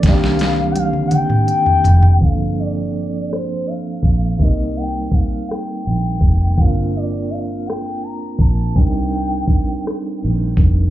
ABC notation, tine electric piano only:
X:1
M:6/8
L:1/8
Q:3/8=55
K:Gm
V:1 name="Tine electric piano"
[E,B,CDG]6 | [F,B,CDA]6 | [G,B,CEB]6 | [B,CDFB]6 |
[G,CDEB]6 |]